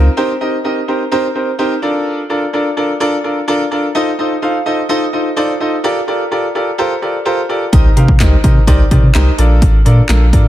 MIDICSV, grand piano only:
0, 0, Header, 1, 2, 480
1, 0, Start_track
1, 0, Tempo, 472441
1, 174, Time_signature, 4, 2, 24, 8
1, 10648, End_track
2, 0, Start_track
2, 0, Title_t, "Grand piano"
2, 0, Program_c, 0, 0
2, 171, Note_on_c, 0, 60, 113
2, 174, Note_on_c, 0, 63, 105
2, 174, Note_on_c, 0, 67, 103
2, 176, Note_on_c, 0, 70, 98
2, 177, Note_on_c, 0, 72, 125
2, 313, Note_off_c, 0, 60, 0
2, 314, Note_off_c, 0, 63, 0
2, 315, Note_off_c, 0, 67, 0
2, 316, Note_off_c, 0, 70, 0
2, 316, Note_off_c, 0, 72, 0
2, 412, Note_on_c, 0, 60, 85
2, 414, Note_on_c, 0, 63, 77
2, 415, Note_on_c, 0, 67, 77
2, 417, Note_on_c, 0, 70, 77
2, 417, Note_on_c, 0, 75, 98
2, 554, Note_off_c, 0, 60, 0
2, 555, Note_off_c, 0, 63, 0
2, 555, Note_off_c, 0, 67, 0
2, 556, Note_off_c, 0, 70, 0
2, 556, Note_off_c, 0, 75, 0
2, 652, Note_on_c, 0, 60, 88
2, 654, Note_on_c, 0, 63, 80
2, 655, Note_on_c, 0, 67, 81
2, 657, Note_on_c, 0, 70, 80
2, 658, Note_on_c, 0, 75, 95
2, 794, Note_off_c, 0, 60, 0
2, 794, Note_off_c, 0, 63, 0
2, 795, Note_off_c, 0, 67, 0
2, 796, Note_off_c, 0, 70, 0
2, 796, Note_off_c, 0, 75, 0
2, 893, Note_on_c, 0, 60, 87
2, 894, Note_on_c, 0, 63, 81
2, 896, Note_on_c, 0, 67, 78
2, 898, Note_on_c, 0, 70, 82
2, 898, Note_on_c, 0, 72, 99
2, 1034, Note_off_c, 0, 60, 0
2, 1035, Note_off_c, 0, 63, 0
2, 1035, Note_off_c, 0, 67, 0
2, 1036, Note_off_c, 0, 70, 0
2, 1037, Note_off_c, 0, 72, 0
2, 1133, Note_on_c, 0, 60, 119
2, 1135, Note_on_c, 0, 63, 105
2, 1135, Note_on_c, 0, 67, 103
2, 1136, Note_on_c, 0, 70, 103
2, 1138, Note_on_c, 0, 72, 127
2, 1274, Note_off_c, 0, 60, 0
2, 1275, Note_off_c, 0, 63, 0
2, 1275, Note_off_c, 0, 67, 0
2, 1276, Note_off_c, 0, 70, 0
2, 1277, Note_off_c, 0, 72, 0
2, 1373, Note_on_c, 0, 60, 87
2, 1374, Note_on_c, 0, 63, 76
2, 1375, Note_on_c, 0, 67, 78
2, 1376, Note_on_c, 0, 70, 80
2, 1378, Note_on_c, 0, 72, 88
2, 1514, Note_off_c, 0, 60, 0
2, 1515, Note_off_c, 0, 63, 0
2, 1515, Note_off_c, 0, 67, 0
2, 1516, Note_off_c, 0, 70, 0
2, 1517, Note_off_c, 0, 72, 0
2, 1612, Note_on_c, 0, 60, 110
2, 1613, Note_on_c, 0, 63, 99
2, 1614, Note_on_c, 0, 67, 103
2, 1615, Note_on_c, 0, 70, 97
2, 1616, Note_on_c, 0, 72, 115
2, 1753, Note_off_c, 0, 60, 0
2, 1754, Note_off_c, 0, 63, 0
2, 1755, Note_off_c, 0, 67, 0
2, 1755, Note_off_c, 0, 70, 0
2, 1755, Note_off_c, 0, 72, 0
2, 1851, Note_on_c, 0, 62, 98
2, 1851, Note_on_c, 0, 65, 88
2, 1853, Note_on_c, 0, 69, 85
2, 1855, Note_on_c, 0, 70, 83
2, 1856, Note_on_c, 0, 74, 103
2, 2236, Note_off_c, 0, 62, 0
2, 2236, Note_off_c, 0, 65, 0
2, 2237, Note_off_c, 0, 69, 0
2, 2238, Note_off_c, 0, 70, 0
2, 2239, Note_off_c, 0, 74, 0
2, 2332, Note_on_c, 0, 62, 84
2, 2333, Note_on_c, 0, 65, 80
2, 2334, Note_on_c, 0, 69, 83
2, 2335, Note_on_c, 0, 70, 77
2, 2337, Note_on_c, 0, 74, 94
2, 2473, Note_off_c, 0, 62, 0
2, 2474, Note_off_c, 0, 65, 0
2, 2475, Note_off_c, 0, 69, 0
2, 2475, Note_off_c, 0, 70, 0
2, 2476, Note_off_c, 0, 74, 0
2, 2573, Note_on_c, 0, 62, 91
2, 2574, Note_on_c, 0, 65, 79
2, 2576, Note_on_c, 0, 69, 85
2, 2577, Note_on_c, 0, 70, 83
2, 2577, Note_on_c, 0, 74, 96
2, 2714, Note_off_c, 0, 62, 0
2, 2715, Note_off_c, 0, 65, 0
2, 2715, Note_off_c, 0, 69, 0
2, 2716, Note_off_c, 0, 70, 0
2, 2716, Note_off_c, 0, 74, 0
2, 2811, Note_on_c, 0, 62, 88
2, 2812, Note_on_c, 0, 65, 83
2, 2813, Note_on_c, 0, 69, 86
2, 2815, Note_on_c, 0, 70, 83
2, 2816, Note_on_c, 0, 74, 100
2, 2953, Note_off_c, 0, 62, 0
2, 2953, Note_off_c, 0, 65, 0
2, 2954, Note_off_c, 0, 69, 0
2, 2955, Note_off_c, 0, 70, 0
2, 2955, Note_off_c, 0, 74, 0
2, 3050, Note_on_c, 0, 62, 114
2, 3051, Note_on_c, 0, 65, 108
2, 3052, Note_on_c, 0, 69, 106
2, 3055, Note_on_c, 0, 70, 105
2, 3056, Note_on_c, 0, 74, 126
2, 3193, Note_off_c, 0, 62, 0
2, 3193, Note_off_c, 0, 65, 0
2, 3194, Note_off_c, 0, 69, 0
2, 3195, Note_off_c, 0, 70, 0
2, 3196, Note_off_c, 0, 74, 0
2, 3290, Note_on_c, 0, 62, 85
2, 3291, Note_on_c, 0, 65, 77
2, 3293, Note_on_c, 0, 69, 74
2, 3294, Note_on_c, 0, 70, 80
2, 3295, Note_on_c, 0, 74, 90
2, 3433, Note_off_c, 0, 62, 0
2, 3433, Note_off_c, 0, 65, 0
2, 3434, Note_off_c, 0, 69, 0
2, 3434, Note_off_c, 0, 70, 0
2, 3435, Note_off_c, 0, 74, 0
2, 3532, Note_on_c, 0, 62, 112
2, 3533, Note_on_c, 0, 65, 102
2, 3534, Note_on_c, 0, 69, 102
2, 3535, Note_on_c, 0, 70, 102
2, 3537, Note_on_c, 0, 74, 126
2, 3674, Note_off_c, 0, 62, 0
2, 3674, Note_off_c, 0, 65, 0
2, 3674, Note_off_c, 0, 69, 0
2, 3675, Note_off_c, 0, 70, 0
2, 3676, Note_off_c, 0, 74, 0
2, 3770, Note_on_c, 0, 62, 89
2, 3772, Note_on_c, 0, 65, 83
2, 3773, Note_on_c, 0, 69, 80
2, 3774, Note_on_c, 0, 70, 86
2, 3775, Note_on_c, 0, 74, 98
2, 3912, Note_off_c, 0, 62, 0
2, 3914, Note_off_c, 0, 65, 0
2, 3914, Note_off_c, 0, 69, 0
2, 3914, Note_off_c, 0, 70, 0
2, 3915, Note_off_c, 0, 74, 0
2, 4011, Note_on_c, 0, 63, 119
2, 4012, Note_on_c, 0, 65, 102
2, 4015, Note_on_c, 0, 69, 102
2, 4015, Note_on_c, 0, 72, 99
2, 4017, Note_on_c, 0, 75, 119
2, 4153, Note_off_c, 0, 63, 0
2, 4154, Note_off_c, 0, 65, 0
2, 4155, Note_off_c, 0, 69, 0
2, 4155, Note_off_c, 0, 72, 0
2, 4156, Note_off_c, 0, 75, 0
2, 4252, Note_on_c, 0, 63, 91
2, 4254, Note_on_c, 0, 65, 78
2, 4256, Note_on_c, 0, 69, 85
2, 4257, Note_on_c, 0, 72, 83
2, 4258, Note_on_c, 0, 75, 97
2, 4394, Note_off_c, 0, 63, 0
2, 4395, Note_off_c, 0, 65, 0
2, 4396, Note_off_c, 0, 69, 0
2, 4396, Note_off_c, 0, 72, 0
2, 4396, Note_off_c, 0, 75, 0
2, 4492, Note_on_c, 0, 63, 91
2, 4493, Note_on_c, 0, 65, 84
2, 4495, Note_on_c, 0, 69, 86
2, 4496, Note_on_c, 0, 72, 86
2, 4497, Note_on_c, 0, 77, 97
2, 4634, Note_off_c, 0, 63, 0
2, 4634, Note_off_c, 0, 65, 0
2, 4635, Note_off_c, 0, 69, 0
2, 4635, Note_off_c, 0, 72, 0
2, 4636, Note_off_c, 0, 77, 0
2, 4731, Note_on_c, 0, 63, 90
2, 4733, Note_on_c, 0, 65, 80
2, 4734, Note_on_c, 0, 69, 83
2, 4736, Note_on_c, 0, 72, 81
2, 4736, Note_on_c, 0, 75, 103
2, 4873, Note_off_c, 0, 63, 0
2, 4874, Note_off_c, 0, 65, 0
2, 4874, Note_off_c, 0, 69, 0
2, 4875, Note_off_c, 0, 72, 0
2, 4876, Note_off_c, 0, 75, 0
2, 4969, Note_on_c, 0, 63, 112
2, 4970, Note_on_c, 0, 65, 106
2, 4971, Note_on_c, 0, 69, 108
2, 4974, Note_on_c, 0, 72, 105
2, 4975, Note_on_c, 0, 75, 127
2, 5112, Note_off_c, 0, 63, 0
2, 5113, Note_off_c, 0, 65, 0
2, 5113, Note_off_c, 0, 69, 0
2, 5114, Note_off_c, 0, 72, 0
2, 5115, Note_off_c, 0, 75, 0
2, 5210, Note_on_c, 0, 63, 87
2, 5212, Note_on_c, 0, 65, 78
2, 5213, Note_on_c, 0, 69, 76
2, 5214, Note_on_c, 0, 72, 76
2, 5215, Note_on_c, 0, 75, 95
2, 5353, Note_off_c, 0, 63, 0
2, 5353, Note_off_c, 0, 65, 0
2, 5354, Note_off_c, 0, 69, 0
2, 5355, Note_off_c, 0, 72, 0
2, 5355, Note_off_c, 0, 75, 0
2, 5450, Note_on_c, 0, 63, 110
2, 5452, Note_on_c, 0, 65, 102
2, 5453, Note_on_c, 0, 69, 104
2, 5454, Note_on_c, 0, 72, 105
2, 5456, Note_on_c, 0, 74, 127
2, 5593, Note_off_c, 0, 63, 0
2, 5594, Note_off_c, 0, 65, 0
2, 5594, Note_off_c, 0, 69, 0
2, 5595, Note_off_c, 0, 72, 0
2, 5595, Note_off_c, 0, 74, 0
2, 5692, Note_on_c, 0, 63, 93
2, 5693, Note_on_c, 0, 65, 86
2, 5695, Note_on_c, 0, 69, 83
2, 5695, Note_on_c, 0, 72, 84
2, 5697, Note_on_c, 0, 75, 99
2, 5833, Note_off_c, 0, 63, 0
2, 5834, Note_off_c, 0, 65, 0
2, 5835, Note_off_c, 0, 69, 0
2, 5835, Note_off_c, 0, 72, 0
2, 5836, Note_off_c, 0, 75, 0
2, 5932, Note_on_c, 0, 65, 112
2, 5932, Note_on_c, 0, 67, 105
2, 5934, Note_on_c, 0, 69, 101
2, 5935, Note_on_c, 0, 70, 105
2, 5937, Note_on_c, 0, 74, 127
2, 6073, Note_off_c, 0, 65, 0
2, 6073, Note_off_c, 0, 67, 0
2, 6075, Note_off_c, 0, 69, 0
2, 6075, Note_off_c, 0, 70, 0
2, 6076, Note_off_c, 0, 74, 0
2, 6172, Note_on_c, 0, 65, 89
2, 6173, Note_on_c, 0, 67, 78
2, 6174, Note_on_c, 0, 69, 78
2, 6175, Note_on_c, 0, 70, 82
2, 6176, Note_on_c, 0, 74, 101
2, 6313, Note_off_c, 0, 65, 0
2, 6314, Note_off_c, 0, 67, 0
2, 6315, Note_off_c, 0, 69, 0
2, 6315, Note_off_c, 0, 70, 0
2, 6316, Note_off_c, 0, 74, 0
2, 6413, Note_on_c, 0, 65, 92
2, 6414, Note_on_c, 0, 67, 83
2, 6416, Note_on_c, 0, 69, 79
2, 6417, Note_on_c, 0, 70, 79
2, 6418, Note_on_c, 0, 74, 102
2, 6554, Note_off_c, 0, 65, 0
2, 6555, Note_off_c, 0, 67, 0
2, 6556, Note_off_c, 0, 69, 0
2, 6556, Note_off_c, 0, 70, 0
2, 6557, Note_off_c, 0, 74, 0
2, 6653, Note_on_c, 0, 65, 90
2, 6654, Note_on_c, 0, 67, 80
2, 6656, Note_on_c, 0, 69, 82
2, 6656, Note_on_c, 0, 70, 81
2, 6658, Note_on_c, 0, 74, 99
2, 6794, Note_off_c, 0, 65, 0
2, 6795, Note_off_c, 0, 67, 0
2, 6796, Note_off_c, 0, 69, 0
2, 6796, Note_off_c, 0, 70, 0
2, 6797, Note_off_c, 0, 74, 0
2, 6891, Note_on_c, 0, 65, 112
2, 6892, Note_on_c, 0, 67, 102
2, 6893, Note_on_c, 0, 69, 103
2, 6895, Note_on_c, 0, 70, 102
2, 6896, Note_on_c, 0, 72, 122
2, 7033, Note_off_c, 0, 65, 0
2, 7034, Note_off_c, 0, 67, 0
2, 7034, Note_off_c, 0, 69, 0
2, 7035, Note_off_c, 0, 70, 0
2, 7036, Note_off_c, 0, 72, 0
2, 7131, Note_on_c, 0, 65, 83
2, 7132, Note_on_c, 0, 67, 75
2, 7134, Note_on_c, 0, 69, 81
2, 7135, Note_on_c, 0, 70, 75
2, 7136, Note_on_c, 0, 74, 94
2, 7273, Note_off_c, 0, 65, 0
2, 7273, Note_off_c, 0, 67, 0
2, 7274, Note_off_c, 0, 69, 0
2, 7275, Note_off_c, 0, 70, 0
2, 7276, Note_off_c, 0, 74, 0
2, 7369, Note_on_c, 0, 65, 106
2, 7371, Note_on_c, 0, 67, 101
2, 7372, Note_on_c, 0, 69, 97
2, 7373, Note_on_c, 0, 70, 103
2, 7374, Note_on_c, 0, 72, 116
2, 7512, Note_off_c, 0, 65, 0
2, 7513, Note_off_c, 0, 67, 0
2, 7514, Note_off_c, 0, 69, 0
2, 7514, Note_off_c, 0, 70, 0
2, 7515, Note_off_c, 0, 72, 0
2, 7611, Note_on_c, 0, 65, 86
2, 7612, Note_on_c, 0, 67, 80
2, 7613, Note_on_c, 0, 69, 85
2, 7614, Note_on_c, 0, 70, 79
2, 7616, Note_on_c, 0, 74, 100
2, 7753, Note_off_c, 0, 65, 0
2, 7753, Note_off_c, 0, 67, 0
2, 7754, Note_off_c, 0, 69, 0
2, 7755, Note_off_c, 0, 70, 0
2, 7755, Note_off_c, 0, 74, 0
2, 7848, Note_on_c, 0, 63, 113
2, 7849, Note_on_c, 0, 67, 103
2, 7851, Note_on_c, 0, 70, 99
2, 7853, Note_on_c, 0, 72, 105
2, 7854, Note_on_c, 0, 75, 121
2, 7992, Note_off_c, 0, 63, 0
2, 7992, Note_off_c, 0, 67, 0
2, 7993, Note_off_c, 0, 70, 0
2, 7994, Note_off_c, 0, 72, 0
2, 7994, Note_off_c, 0, 75, 0
2, 8091, Note_on_c, 0, 63, 90
2, 8092, Note_on_c, 0, 67, 81
2, 8093, Note_on_c, 0, 70, 80
2, 8094, Note_on_c, 0, 72, 79
2, 8096, Note_on_c, 0, 77, 96
2, 8233, Note_off_c, 0, 63, 0
2, 8234, Note_off_c, 0, 67, 0
2, 8234, Note_off_c, 0, 70, 0
2, 8235, Note_off_c, 0, 72, 0
2, 8236, Note_off_c, 0, 77, 0
2, 8332, Note_on_c, 0, 63, 91
2, 8333, Note_on_c, 0, 67, 81
2, 8334, Note_on_c, 0, 70, 82
2, 8336, Note_on_c, 0, 72, 83
2, 8336, Note_on_c, 0, 75, 93
2, 8473, Note_off_c, 0, 63, 0
2, 8474, Note_off_c, 0, 67, 0
2, 8474, Note_off_c, 0, 70, 0
2, 8476, Note_off_c, 0, 72, 0
2, 8476, Note_off_c, 0, 75, 0
2, 8571, Note_on_c, 0, 63, 87
2, 8572, Note_on_c, 0, 67, 78
2, 8573, Note_on_c, 0, 70, 84
2, 8575, Note_on_c, 0, 72, 78
2, 8576, Note_on_c, 0, 75, 98
2, 8713, Note_off_c, 0, 63, 0
2, 8714, Note_off_c, 0, 67, 0
2, 8714, Note_off_c, 0, 70, 0
2, 8715, Note_off_c, 0, 72, 0
2, 8715, Note_off_c, 0, 75, 0
2, 8812, Note_on_c, 0, 63, 115
2, 8813, Note_on_c, 0, 67, 105
2, 8813, Note_on_c, 0, 70, 100
2, 8816, Note_on_c, 0, 72, 106
2, 8817, Note_on_c, 0, 74, 126
2, 8954, Note_off_c, 0, 63, 0
2, 8954, Note_off_c, 0, 67, 0
2, 8954, Note_off_c, 0, 70, 0
2, 8955, Note_off_c, 0, 72, 0
2, 8956, Note_off_c, 0, 74, 0
2, 9054, Note_on_c, 0, 63, 85
2, 9055, Note_on_c, 0, 67, 77
2, 9056, Note_on_c, 0, 70, 76
2, 9057, Note_on_c, 0, 72, 81
2, 9059, Note_on_c, 0, 74, 94
2, 9194, Note_off_c, 0, 63, 0
2, 9195, Note_off_c, 0, 67, 0
2, 9195, Note_off_c, 0, 70, 0
2, 9196, Note_off_c, 0, 72, 0
2, 9197, Note_off_c, 0, 74, 0
2, 9291, Note_on_c, 0, 63, 114
2, 9293, Note_on_c, 0, 67, 104
2, 9294, Note_on_c, 0, 70, 100
2, 9295, Note_on_c, 0, 72, 99
2, 9297, Note_on_c, 0, 75, 116
2, 9433, Note_off_c, 0, 63, 0
2, 9434, Note_off_c, 0, 67, 0
2, 9435, Note_off_c, 0, 70, 0
2, 9435, Note_off_c, 0, 72, 0
2, 9436, Note_off_c, 0, 75, 0
2, 9531, Note_on_c, 0, 62, 97
2, 9532, Note_on_c, 0, 65, 89
2, 9533, Note_on_c, 0, 69, 86
2, 9535, Note_on_c, 0, 70, 86
2, 9537, Note_on_c, 0, 74, 102
2, 9916, Note_off_c, 0, 62, 0
2, 9917, Note_off_c, 0, 65, 0
2, 9918, Note_off_c, 0, 69, 0
2, 9918, Note_off_c, 0, 70, 0
2, 9919, Note_off_c, 0, 74, 0
2, 10009, Note_on_c, 0, 62, 87
2, 10011, Note_on_c, 0, 65, 77
2, 10012, Note_on_c, 0, 69, 84
2, 10013, Note_on_c, 0, 70, 81
2, 10014, Note_on_c, 0, 74, 95
2, 10152, Note_off_c, 0, 62, 0
2, 10153, Note_off_c, 0, 65, 0
2, 10154, Note_off_c, 0, 69, 0
2, 10154, Note_off_c, 0, 70, 0
2, 10155, Note_off_c, 0, 74, 0
2, 10249, Note_on_c, 0, 62, 89
2, 10250, Note_on_c, 0, 65, 81
2, 10252, Note_on_c, 0, 69, 83
2, 10253, Note_on_c, 0, 70, 81
2, 10255, Note_on_c, 0, 77, 100
2, 10392, Note_off_c, 0, 62, 0
2, 10393, Note_off_c, 0, 65, 0
2, 10394, Note_off_c, 0, 69, 0
2, 10394, Note_off_c, 0, 70, 0
2, 10395, Note_off_c, 0, 77, 0
2, 10490, Note_on_c, 0, 62, 90
2, 10492, Note_on_c, 0, 65, 82
2, 10493, Note_on_c, 0, 69, 82
2, 10493, Note_on_c, 0, 70, 80
2, 10495, Note_on_c, 0, 74, 99
2, 10633, Note_off_c, 0, 62, 0
2, 10633, Note_off_c, 0, 65, 0
2, 10634, Note_off_c, 0, 69, 0
2, 10634, Note_off_c, 0, 70, 0
2, 10635, Note_off_c, 0, 74, 0
2, 10648, End_track
0, 0, End_of_file